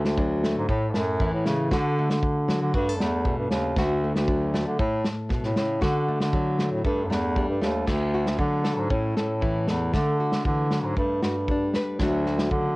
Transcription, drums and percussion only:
0.05 snare medium
0.18 kick medium
0.44 snare medium
0.69 kick medium
0.94 snare medium
1.20 kick medium
1.46 snare medium
1.71 kick medium
1.71 snare medium
2.10 snare medium
2.23 kick medium
2.49 snare medium
2.74 kick medium
3.00 snare medium
3.25 kick medium
3.51 snare medium
3.76 kick medium
3.76 snare medium
4.16 snare medium
4.28 kick medium
4.54 snare medium
4.79 kick medium
5.04 snare medium
5.30 kick medium
5.30 snare soft
5.43 snare soft
5.56 snare medium
5.82 kick medium
5.82 snare medium
6.20 snare medium
6.33 kick medium
6.59 snare medium
6.85 kick medium
7.11 snare medium
7.36 kick medium
7.62 snare medium
7.87 kick medium
7.87 snare medium
7.87 crash medium
8.26 snare medium
8.39 kick medium
8.64 snare medium
8.90 kick medium
9.17 snare medium
9.42 kick medium
9.67 snare medium
9.93 kick medium
9.93 snare medium
10.32 snare medium
10.45 kick medium
10.71 snare medium
10.97 kick medium
11.22 snare medium
11.48 kick medium
11.74 snare medium
11.99 kick medium
11.99 snare medium
12.26 snare soft
12.39 snare medium
12.51 kick medium

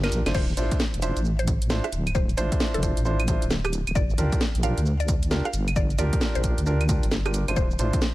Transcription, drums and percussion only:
0.04 snare medium
0.04 closed hi-hat soft
0.04 claves medium
0.04 shaker soft
0.12 closed hi-hat loud
0.12 shaker medium
0.26 snare loud
0.26 closed hi-hat medium
0.26 claves medium
0.26 shaker soft
0.35 kick loud
0.35 crash medium
0.35 shaker soft
0.49 shaker soft
0.57 closed hi-hat loud
0.57 shaker medium
0.71 kick loud
0.71 closed hi-hat medium
0.71 shaker soft
0.80 snare loud
0.80 shaker soft
0.94 closed hi-hat medium
0.94 shaker soft
1.02 closed hi-hat loud
1.02 shaker medium
1.17 closed hi-hat medium
1.17 shaker soft
1.25 shaker soft
1.39 closed hi-hat medium
1.39 shaker soft
1.47 kick loud
1.47 closed hi-hat loud
1.47 shaker medium
1.62 closed hi-hat medium
1.62 shaker soft
1.70 snare loud
1.70 shaker soft
1.84 cross-stick medium
1.84 closed hi-hat soft
1.84 shaker soft
1.93 closed hi-hat loud
1.93 shaker medium
2.07 closed hi-hat medium
2.07 claves medium
2.07 shaker soft
2.15 kick loud
2.15 shaker soft
2.29 closed hi-hat soft
2.29 shaker soft
2.38 closed hi-hat loud
2.38 shaker medium
2.52 kick loud
2.52 closed hi-hat medium
2.52 shaker soft
2.60 snare loud
2.60 shaker soft
2.75 closed hi-hat medium
2.75 shaker soft
2.83 kick medium
2.83 closed hi-hat loud
2.83 shaker medium
2.97 closed hi-hat medium
2.97 shaker soft
3.05 shaker soft
3.20 closed hi-hat medium
3.20 claves medium
3.20 shaker soft
3.28 kick loud
3.28 closed hi-hat loud
3.28 shaker medium
3.42 closed hi-hat medium
3.42 shaker soft
3.50 snare loud
3.50 shaker soft
3.65 cross-stick medium
3.65 closed hi-hat soft
3.65 claves medium
3.65 shaker soft
3.73 closed hi-hat loud
3.73 shaker medium
3.87 closed hi-hat medium
3.87 claves medium
3.87 shaker soft
3.96 kick loud
3.96 shaker soft
4.10 shaker soft
4.18 closed hi-hat loud
4.18 shaker medium
4.32 kick loud
4.32 closed hi-hat medium
4.32 shaker soft
4.41 snare loud
4.41 shaker soft
4.55 closed hi-hat soft
4.55 shaker soft
4.63 closed hi-hat loud
4.63 shaker medium
4.78 closed hi-hat medium
4.78 shaker soft
4.86 shaker soft
5.00 closed hi-hat soft
5.00 shaker soft
5.08 kick loud
5.08 closed hi-hat loud
5.08 shaker medium
5.23 closed hi-hat medium
5.23 shaker soft
5.31 snare loud
5.31 shaker soft
5.45 cross-stick medium
5.45 closed hi-hat soft
5.45 shaker soft
5.54 closed hi-hat loud
5.54 shaker medium
5.68 closed hi-hat medium
5.68 claves medium
5.68 shaker soft
5.76 kick loud
5.76 shaker soft
5.90 closed hi-hat soft
5.90 shaker soft
5.99 closed hi-hat loud
5.99 shaker medium
6.13 kick loud
6.13 closed hi-hat medium
6.13 shaker soft
6.21 snare loud
6.21 shaker soft
6.35 closed hi-hat medium
6.35 shaker soft
6.44 kick medium
6.44 closed hi-hat loud
6.44 shaker medium
6.58 closed hi-hat medium
6.58 shaker soft
6.66 shaker soft
6.81 closed hi-hat soft
6.81 claves medium
6.81 shaker soft
6.89 kick loud
6.89 closed hi-hat loud
6.89 shaker medium
7.03 closed hi-hat medium
7.03 shaker soft
7.11 snare loud
7.11 shaker soft
7.26 cross-stick medium
7.26 closed hi-hat soft
7.26 claves medium
7.26 shaker soft
7.34 closed hi-hat loud
7.34 shaker medium
7.48 closed hi-hat medium
7.48 claves medium
7.48 shaker soft
7.57 kick loud
7.57 shaker soft
7.71 shaker soft
7.79 closed hi-hat loud
7.79 shaker medium
7.93 kick loud
7.93 closed hi-hat medium
7.93 shaker soft
8.02 snare loud
8.02 shaker soft

